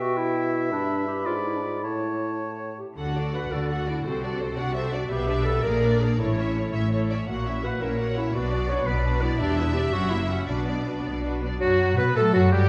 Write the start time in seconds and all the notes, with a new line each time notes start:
Already playing: B2 E5 G5
0.01 F#4
0.17 E4
0.72 G2 D4 B5
1.07 G4
1.26 G#2 F4 D5
1.46 E4
1.56 D4
1.63 F4
1.81 A2 E4 C#5 A5
2.79 G4
2.97 D2 D3 F#4 A4 F#5
3.16 D4 F#4 D5
3.33 F#4 A4 B4 F#5
3.51 D2 D3 D4 F#4 A4 D5
3.69 F#4 A4 F#5
3.87 D4 E4 F#4 D5
4.04 C2 C3 C4 F#4 A4 C5
4.23 D4 F#4 D5
4.40 C4 A4 C5
4.57 C2 C3 D4 F#4 D5 F#5
4.74 C4 A4 C5 E5
4.93 D4 F#4 D5
5.10 B1 B2 B3 G4 B4 E5
5.27 D4 B4 D5
5.45 B3 G4 A4 B4
5.62 A#1 A#2 A#3 G#4 A#4 D5
5.82 D4 A#4 D5
6.00 A#3 D4 G#4 A#4
6.18 A1 A2 E4 A4 C#5
6.38 C#4 C#5 E5
6.55 E4 A4 C#5
6.73 A1 A2 C#4 C#5 E5
6.91 E4 A4 C#5
7.10 C#4 C#5 D5 E5
7.28 A#1 A#2 A#3 F#4 F#5
7.46 C#4 E4 E5
7.64 A#3 F#4 B4 F#5
7.81 A#1 A#2 C#4 E4 A#4 C#5 E5
7.98 A#3 F#4 F#5
8.16 C#4 E4 E5
8.33 B1 B2 D4 F#4 B4 D5
8.51 B3 D4 D5
8.68 D4 F#4 B4 C#5
8.86 B1 B2 B3 D4 B4 D5
9.04 D4 F#4 B4
9.21 B3 D4 E4 D5
9.39 E1 E2 D4 G4 D5 E5
9.57 B3 E4 E5
9.74 D4 G4 D5
9.92 F#1 F#2 C#4 F#4 F#5
10.10 A#3 E4 E5
10.28 C#4 F#4 F#5
10.47 B1 B2 D4 F#4 B4 D5
10.66 B3 D4 D5
10.85 D4 F#4 B4
11.03 B1 B2 B3 D4 D5
11.21 D4 F#4 B4
11.41 B3 D4 D5
11.59 F#2 F#3 F#4
11.97 B2 B3 B4
12.15 A2 F#3 A3 A4
12.33 F#2 F#3 F#4
12.52 G2 G3 G4